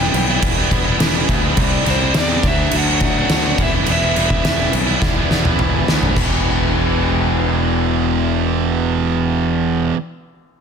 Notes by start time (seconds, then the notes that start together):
Already playing: E3 G5
0.00 G3 B3 E4
0.13 B1 E3 G3 B3 E4, muted distorted electric guitar stroke, crash
0.28 G3 B3 E4
0.32 G3
0.42 E1, kick, crash
0.59 G3 B3 E4
0.71 E1, kick, crash
0.86 G3 B3 E4
0.99 E1 E3 G3 B3 E4, snare, crash
1.15 G3 B3 E4
1.28 D2 E3 G3 B3 E4, kick, crash
1.32 B3 E4
1.45 G3 B3 E4
1.57 C2 C3 G3 C4 D4, kick, crash
1.85 C2 C3 G3 C4 D4, snare, crash
1.90 C5
2.00 G3 C4 D4
2.14 E2 C3 G3 C4 D4, snare, crash
2.18 D5
2.29 G3 C4 D4
2.42 D2 D3 F#3 A3 D4, kick, crash
2.47 E5
2.58 F#3 A3 D4
2.71 D2, crash
2.78 F#5
2.88 F#3 A3 D4
3.00 kick, crash
3.06 F#5
3.17 F#3 A3 D4
3.29 D2 D3 F#3 A3, snare, crash
3.34 D4
3.45 F#3 A3 D4
3.58 E1 E3 G3 B3 E4, kick, crash
3.63 E5
3.75 G3 B3 E4
3.86 E1 E3 G3 B3, crash
3.91 E4 E5
4.15 E1 E3 G3 B3 E4, crash
4.30 G3 B3 E4, kick
4.44 E1 E3 G3 B3 E4, snare, crash
4.59 G3 B3 E4
4.73 B1 E3 G3 B3, muted distorted electric guitar stroke, crash
4.78 E4
4.87 G3 B3 E4
5.02 E1, kick, snare
5.15 G3 B3 E4
5.30 E1, snare
5.45 G3 B3 E4, mid tom
5.59 E1 E3 G3 B3 E4, mid tom
5.73 G3 B3 E4
5.87 D2 E3 G3 B3 E4, snare
6.03 B3 E4, floor tom
6.08 G3
6.16 E1 E2 B2 E3 B3 E4, kick, crash
6.20 E3 G4